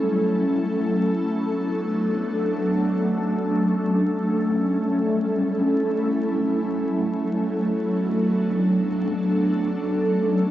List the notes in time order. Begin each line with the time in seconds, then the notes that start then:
Already playing: F#3 A3 C#4 E4 A4
1.06 F#3 B3 D4
2.69 C#4
4.33 G3 E4
5.96 F#3
7.59 B3 D4 A4
9.22 A3 C#4